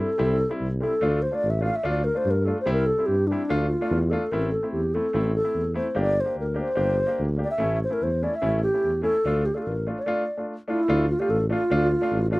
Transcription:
0.00 alto flute A4
0.18 tuba C2, upright piano G3 C4 E4
0.49 upright piano G3 C4 E4
0.60 tuba C2
0.80 upright piano G3 C4 E4, alto flute A4
1.01 tuba D2, upright piano A3 D4 F4
1.22 alto flute C5
1.31 upright piano A3 D4 F4, alto flute D5
1.44 tuba A1
1.50 alto flute E5
1.61 upright piano A3 D4 F4, alto flute F5
1.76 alto flute E5
1.83 tuba D2, upright piano A3 D4 F4
1.89 alto flute D5
2.04 alto flute A#4
2.14 upright piano A3 D4 F4, alto flute C5
2.25 tuba G2
2.31 alto flute A#4
2.45 upright piano A3 D4 F4, alto flute A4
2.61 alto flute C5
2.66 tuba C2, upright piano G3 C4 E4
2.73 alto flute A#4
2.86 alto flute A4
2.98 upright piano G3 C4 E4
3.06 tuba G2, alto flute G4
3.27 upright piano G3, alto flute D4
3.32 upright piano C4 E4
3.49 tuba D2, upright piano A3 D4 F4
3.68 alto flute F4
3.81 upright piano A3 D4 F4
3.90 tuba E2
4.10 upright piano A3 D4 F4, alto flute A4
4.31 tuba A1, upright piano A3 C4 E4, alto flute A#4
4.52 alto flute A4
4.63 upright piano A3 C4 E4
4.72 tuba E2, alto flute G4
4.94 upright piano A3 C4 E4, alto flute A4
5.13 tuba A1, upright piano A3 C4 E4
5.35 alto flute A4
5.44 upright piano A3 C4 E4
5.54 tuba E2
5.74 upright piano A3 C4 E4, alto flute C5
5.95 tuba G1, upright piano A#3 D4 G4
5.99 alto flute D5
6.20 upright piano A#3, alto flute C5
6.25 upright piano D4 G4
6.37 tuba D2, alto flute A#4
6.54 upright piano A#3 D4 G4
6.61 alto flute C5
6.75 tuba G1, upright piano A#3 D4 G4
7.06 upright piano A#3 D4 G4
7.19 tuba D2
7.36 upright piano A#3 D4 G4
7.44 alto flute D5
7.51 alto flute E5
7.58 tuba A1, upright piano A3 C#4 E4
7.84 alto flute C5
7.89 upright piano A3 C#4 E4, alto flute A#4
8.01 tuba E2, alto flute C5
8.22 upright piano A3 C#4 E4, alto flute D5
8.35 alto flute E5
8.42 tuba A1, upright piano A3 C#4 E4
8.63 alto flute G4
8.73 upright piano A3 C#4 E4
8.84 tuba E2
9.02 upright piano A3 C#4 E4, alto flute A4
9.25 tuba D2, upright piano A3 D4 F4
9.45 alto flute G4
9.54 upright piano A3 D4 F4, alto flute G4 A4
9.62 tuba A1, alto flute A4
9.68 alto flute A#4
9.87 upright piano A3 D4 F4
9.98 alto flute D5
10.06 upright piano A3 D4 F4
10.37 upright piano A3 D4 F4
10.68 upright piano A3 D4 F4, alto flute E4
10.88 tuba D2, upright piano A3 D4 F4
11.10 alto flute F4
11.19 upright piano A3 D4 F4, alto flute G4
11.29 tuba A1, alto flute A4
11.49 upright piano A3 D4 F4, alto flute F4
11.70 tuba D2, upright piano A3 D4 F4
12.01 upright piano A3 D4 F4
12.12 tuba A1
12.31 upright piano A3 D4 F4, alto flute G4

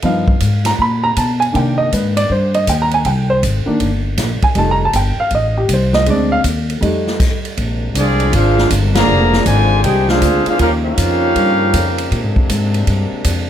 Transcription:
0.02 upright bass G2, grand piano F3 B3 D#4 F5, kick, ride
0.28 kick
0.40 upright bass G#2, kick, hi-hat pedal, ride
0.65 grand piano A#5, snare, ride
0.79 upright bass A#2, grand piano B5, kick
1.04 grand piano A#5
1.17 upright bass B2, grand piano A5, kick, hi-hat pedal, ride
1.40 grand piano G#5, ride
1.53 upright bass C3, grand piano D#3 A#3 D4 G5, kick, ride
1.78 grand piano D#5
1.92 upright bass G#2, grand piano B4, kick, hi-hat pedal, ride
2.17 grand piano D5, ride
2.29 upright bass G2, grand piano C5, kick
2.54 grand piano D#5, ride
2.67 upright bass D#2, grand piano G5, kick, hi-hat pedal, ride
2.82 grand piano A#5
2.91 grand piano G#5, ride
3.05 upright bass C2, grand piano G5, kick, ride
3.30 grand piano C5
3.43 upright bass G#1, kick, hi-hat pedal, ride
3.66 grand piano D#3 A#3 D4, muted upright bass stroke
3.80 upright bass G1, kick, ride
4.18 upright bass A#1, kick, snare, hi-hat pedal, ride
4.42 grand piano G#5, muted upright bass stroke, kick, ride
4.55 upright bass F1, grand piano G3 A3 D#4 A5, kick, ride
4.71 grand piano A#5
4.85 grand piano A5
4.93 upright bass G1, grand piano G5, kick, hi-hat pedal, ride
5.18 grand piano F5, muted upright bass stroke
5.31 upright bass A1, kick, ride
5.35 grand piano D#5
5.58 grand piano G4
5.69 upright bass C2, kick, hi-hat pedal, ride
5.73 grand piano C5
5.93 grand piano D#5, snare
6.06 upright bass D2, grand piano G#3 C4 D4, kick, ride
6.10 grand piano D5
6.32 grand piano F5
6.44 upright bass D#2, kick, hi-hat pedal, ride
6.70 ride
6.81 upright bass F2, grand piano G3 A3 D#4, kick, ride
7.07 snare
7.20 kick, hi-hat pedal, crash, ride
7.45 ride
7.57 upright bass A#1, trombone section C3 G#3 A#3 D4, kick, ride
7.95 upright bass C2, trombone section F3 G#3 D4, trumpet section C4 F4 G#4 D5, kick, hi-hat pedal, ride
8.20 ride
8.32 upright bass G#1, trombone section G#3 D4 F4, trumpet section D4 G#4 C5 F5, kick, ride
8.58 snare
8.70 upright bass G1, kick, hi-hat pedal, ride
8.95 trombone section D3 F3 A#3, trumpet section G#4 D5 F5 A#5, snare, ride
9.08 upright bass F1
9.33 snare
9.45 upright bass G#1, trombone section D3 F3 G#3, trumpet section F4 C5 D5 G#5, kick, hi-hat pedal, ride
9.83 upright bass C2, trumpet section D#4 G#4 C5 G5, trombone section G4, kick, ride
10.09 trombone section G#3 D4 F4, trumpet section D4 G#4 C5 F5, snare
10.22 upright bass D2, kick, hi-hat pedal, ride
10.46 trombone section G#3 D4 F4, trumpet section D4 G#4 C5 F5, muted upright bass stroke, ride
10.57 upright bass D#2, trombone section C#3 F3 G3 A#3 C#4 D#4 F4, trumpet section C#4 A#4 F5, kick, ride
10.61 trumpet section G4
10.83 trombone section A#3 C#4 F4, trumpet section C#4 G4 A#4 F5
10.97 upright bass F2, kick, hi-hat pedal, ride
11.36 upright bass G2, kick, ride
11.73 upright bass F2, kick, hi-hat pedal, ride
11.98 ride
12.11 upright bass A#2, trombone section C3 G#3 A#3 D4, kick, ride
12.24 upright bass G#2
12.36 upright bass F2, kick
12.49 upright bass G#2, kick, hi-hat pedal, ride
12.74 ride
12.87 upright bass G2, kick, ride
13.11 muted upright bass stroke
13.24 upright bass F2, kick, hi-hat pedal, ride

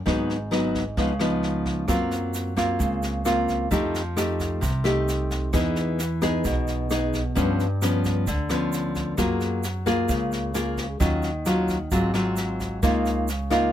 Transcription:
0.06 upright bass G#1, nylon-string guitar G#2 F#3 B3 D#4, kick, snare
0.30 snare
0.51 nylon-string guitar F#3 B3 D#4, cross-stick, snare
0.75 kick, snare
0.97 upright bass C#2, nylon-string guitar C#3 F3 B3 D#4, kick, snare
1.19 nylon-string guitar F3 B3 D#4, cross-stick, snare
1.43 snare
1.66 kick, snare
1.88 upright bass F#2, nylon-string guitar F#3 A#3 C4 F4, kick, cross-stick, snare, shaker
2.11 snare, shaker
2.34 snare, shaker
2.56 nylon-string guitar A#3 C4 F4, kick, cross-stick, snare, shaker
2.79 upright bass C#2, nylon-string guitar C#3, kick, snare, shaker
3.02 snare, shaker
3.25 nylon-string guitar A#3 C4 F4, cross-stick, snare, shaker
3.48 kick, snare, shaker
3.71 upright bass F2, nylon-string guitar F3 A3 D#4 G4, kick, snare, shaker
3.95 snare, shaker
4.16 nylon-string guitar A3 D#4 G4, cross-stick, snare, shaker
4.40 kick, snare, shaker
4.61 upright bass C2, nylon-string guitar C3, kick, snare, shaker
4.84 nylon-string guitar A3 D#4 G4, cross-stick, snare, shaker
5.08 snare, shaker
5.31 kick, snare, shaker
5.53 upright bass E2, nylon-string guitar E3 B3 D#4 G#4, kick, cross-stick, snare, shaker
5.76 snare, shaker
5.99 snare, shaker
6.22 nylon-string guitar B3 D#4 G#4, kick, cross-stick, snare, shaker
6.44 upright bass B1, nylon-string guitar B2, kick, snare, shaker
6.67 snare, shaker
6.90 nylon-string guitar B3 D#4 G#4, cross-stick, snare, shaker
7.13 kick, snare, shaker
7.35 nylon-string guitar G2 F3 B3 C#4, upright bass G2, kick, snare, shaker
7.60 snare, shaker
7.82 nylon-string guitar F3 B3 C#4, cross-stick, snare, shaker
8.04 kick, snare, shaker
8.27 upright bass D2, nylon-string guitar D3, kick, snare, shaker
8.49 nylon-string guitar F3 B3 C#4, cross-stick, snare, shaker
8.72 snare, shaker
8.95 kick, snare, shaker
9.18 upright bass F#2, nylon-string guitar F#3 A#3 F4 G#4, kick, cross-stick, snare, shaker
9.41 snare, shaker
9.63 snare, shaker
9.86 nylon-string guitar A#3 F4 G#4, kick, cross-stick, snare, shaker
10.08 upright bass C#2, nylon-string guitar C#3, kick, snare, shaker
10.32 snare, shaker
10.54 nylon-string guitar A#3 F4 G#4, cross-stick, snare, shaker
10.77 kick, snare, shaker
11.00 upright bass D#2, nylon-string guitar D#3 F#3 C#4 F4, kick, snare, shaker
11.22 snare, shaker
11.46 nylon-string guitar F#3 C#4 F4, cross-stick, snare, shaker
11.68 kick, snare, shaker
11.91 upright bass G#1, nylon-string guitar G#2 F#3 C4 F4, kick, snare, shaker
12.14 nylon-string guitar F#3 C4 F4, cross-stick, snare, shaker
12.36 snare, shaker
12.60 kick, snare, shaker
12.83 upright bass C#2, nylon-string guitar C#3 A#3 D#4 F4, kick, cross-stick, snare, shaker
13.05 snare, shaker
13.28 snare, shaker
13.50 nylon-string guitar A#3 D#4 F4, kick, cross-stick, snare, shaker

